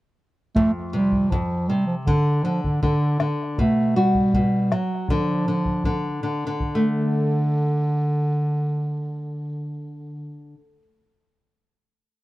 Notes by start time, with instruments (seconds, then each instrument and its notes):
0.55 nylon-string guitar F2, bass clarinet A3, bombo low
0.93 nylon-string guitar C3, bass clarinet G3
1.12 bombo low
1.30 nylon-string guitar F2, bass clarinet F3, bombo low
1.68 nylon-string guitar C3, bass clarinet G3
1.87 bass clarinet F3
2.06 bass clarinet D3, nylon-string guitar D3, bombo low
2.43 nylon-string guitar D3, bass clarinet F3
2.63 bass clarinet D3, bombo low
2.82 bass clarinet D3, nylon-string guitar D3, bombo low
3.20 nylon-string guitar D3, bombo rim
3.58 nylon-string guitar B2, bass clarinet A3, bombo low
3.96 bass clarinet G3, nylon-string guitar F#4
4.15 bombo low
4.34 nylon-string guitar B2, bombo low
4.72 nylon-string guitar F#3, bass clarinet F#3, bombo rim
5.08 nylon-string guitar D3, bass clarinet F3, bombo low
5.48 nylon-string guitar D3
5.65 bombo low
5.84 nylon-string guitar D3, bombo low
6.23 nylon-string guitar D3
6.47 nylon-string guitar D3
6.60 bass clarinet D3, bombo low
6.75 nylon-string guitar A3